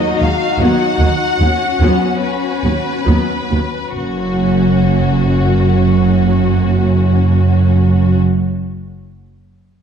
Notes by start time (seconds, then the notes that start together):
Already playing: F#3 A#3 D#4 F#4 D#5
0.19 D#2 F#3 G#3 F5
0.58 D#2 F#3 B3 F#5
0.99 D#2 F#3 A#3
1.39 D#2 F#3 B3 C#4
1.80 D#2 F#3 B3
2.22 B4
2.64 D#2 F#3 B3
3.06 D#2 F#3 B3
3.50 D#2 F#3 B3
3.93 F#1 F#2 F#3 A#3 C#4 F#4